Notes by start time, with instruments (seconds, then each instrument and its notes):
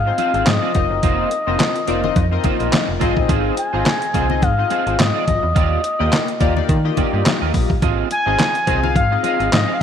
Already playing: fm bass G#2, analog synth lead F5
0.06 analog polysynth C4 D#4 F4 G#4 C5, muted clean electric guitar stroke
0.18 clean electric guitar C4 F4 G#4 C5, analog synth lead F5, closed hi-hat, muted conga
0.34 fm bass G#1, clean electric guitar C4 F4 G#4 C5, closed hi-hat
0.46 fm bass G#2, analog synth lead D#5, muted clean electric guitar stroke, snare, clap, closed hi-hat, high conga
0.62 clean electric guitar C4 F4 G#4 D5
0.74 fm bass F1, analog polysynth C4 D#4 F4 A#4 D#5, muted clean electric guitar stroke, kick, closed hi-hat, high conga
0.90 fm bass F#1, muted clean electric guitar stroke
1.02 fm bass F1, clean electric guitar A#3 D#4 F4 C5, analog synth lead D#5, kick, closed hi-hat
1.31 muted clean electric guitar stroke, closed hi-hat
1.47 fm bass F1, clean electric guitar A#3 D#4 F4 C5, analog polysynth C4 D#4 F4 A#4 D#5
1.60 snare, clap, closed hi-hat, high conga
1.75 muted clean electric guitar stroke, closed hi-hat
1.87 fm bass F1, clean electric guitar A#3 D#4 F4 C5, analog polysynth C4 D#4 F4 A#4 D5, closed hi-hat
2.03 analog polysynth C4 D#4 F4 A#4 D#5, muted clean electric guitar stroke, low conga
2.16 fm bass F2, muted clean electric guitar stroke, kick, closed hi-hat, muted conga
2.31 analog polysynth C4 D#4 F4 A#4 D#5, muted clean electric guitar stroke
2.43 clean electric guitar A#3 D#4 F4 C5, kick, closed hi-hat, muted conga, low conga
2.59 fm bass A#1, clean electric guitar A#3 D#4 F4 C5, closed hi-hat
2.73 snare, clap, closed hi-hat, high conga
2.88 fm bass F1, muted clean electric guitar stroke
3.00 fm bass G#1, clean electric guitar C4 F4 G#4 C5, analog polysynth C4 D#4 F4 G#4 D#5, kick, closed hi-hat, high conga
3.16 fm bass A1, muted clean electric guitar stroke, kick
3.28 fm bass G#1, clean electric guitar C4 F4 G#4 C5, kick, closed hi-hat
3.57 analog synth lead G#5, muted clean electric guitar stroke, closed hi-hat
3.73 fm bass G#1, analog polysynth C4 D#4 F4 G#4 D#5, clean electric guitar C4 F4 G#4 C5
3.86 snare, clap, closed hi-hat, high conga
4.01 muted clean electric guitar stroke, closed hi-hat
4.14 fm bass C2, clean electric guitar C4 F4 G#4 C5, analog polysynth C4 D#4 F4 G#4 D#5, kick, closed hi-hat
4.30 analog polysynth C4 D#4 F4 G#4 D#5, muted clean electric guitar stroke, low conga
4.42 fm bass G#2, analog synth lead F5, muted clean electric guitar stroke, kick, closed hi-hat, muted conga
4.57 analog polysynth C4 D#4 F4 G#4 D#5, muted clean electric guitar stroke
4.70 clean electric guitar C4 F4 G#4 C5, closed hi-hat, muted conga
4.86 fm bass G#1, clean electric guitar C4 F4 G#4 C5, closed hi-hat
4.99 fm bass G#2, analog synth lead D#5, snare, clap, closed hi-hat, high conga
5.14 clean electric guitar C4 F4 G#4 D5
5.27 fm bass G#1, analog synth lead D#5, muted clean electric guitar stroke, kick, closed hi-hat, high conga
5.43 fm bass E2, muted clean electric guitar stroke
5.55 fm bass D#2, clean electric guitar A#3 F4 G4 D5, analog synth lead D#5, kick, closed hi-hat
5.83 muted clean electric guitar stroke, closed hi-hat
5.99 fm bass D#2, analog polysynth A#3 D#4 F4 G4 D#5, clean electric guitar A#3 F4 G4 D5
6.13 snare, clap, closed hi-hat, high conga
6.28 muted clean electric guitar stroke, closed hi-hat
6.40 fm bass D#2, clean electric guitar A#3 F4 G4 D5, analog polysynth A#3 D#4 F4 G4 D5, kick, closed hi-hat
6.56 analog polysynth A#3 D#4 F4 G4 D5, muted clean electric guitar stroke, low conga
6.68 fm bass D#3, muted clean electric guitar stroke, kick, closed hi-hat, muted conga
6.84 analog polysynth A#3 D#4 F4 G4 D#5, muted clean electric guitar stroke
6.97 clean electric guitar A#3 F4 G4 D5, kick, closed hi-hat, muted conga, low conga
7.13 fm bass G2, clean electric guitar A#3 F4 G4 D5
7.26 snare, clap, closed hi-hat, high conga
7.41 fm bass D#2, clean electric guitar A#3 F4 G4 D#5
7.54 fm bass A#1, muted clean electric guitar stroke, kick, open hi-hat, high conga
7.69 fm bass A1, muted clean electric guitar stroke, kick
7.82 fm bass G#1, clean electric guitar C4 F4 G#4 D#5, kick, closed hi-hat
8.10 analog synth lead G#5, muted clean electric guitar stroke, closed hi-hat, muted conga
8.26 fm bass G#1, analog polysynth C4 D#4 F4 G#4 D#5, clean electric guitar C4 F4 G#4 D#5
8.39 snare, clap, closed hi-hat, high conga
8.54 muted clean electric guitar stroke, closed hi-hat
8.67 fm bass C2, clean electric guitar C4 F4 G#4 D#5, analog polysynth C4 D#4 F4 G#4 C5, kick, closed hi-hat
8.82 analog polysynth C4 D#4 F4 G#4 F5, muted clean electric guitar stroke, low conga
8.95 fm bass G#2, analog synth lead F5, muted clean electric guitar stroke, kick, closed hi-hat, muted conga
9.11 analog polysynth C4 D#4 F4 G#4 D#5, muted clean electric guitar stroke
9.23 clean electric guitar C4 F4 G#4 D#5, analog synth lead F5, closed hi-hat, muted conga
9.39 fm bass G#1, clean electric guitar C4 F4 G#4 D#5, closed hi-hat
9.52 fm bass G#2, analog synth lead D#5, muted clean electric guitar stroke, snare, clap, closed hi-hat, high conga
9.68 clean electric guitar C4 F4 G#4 F5
9.74 analog synth lead F5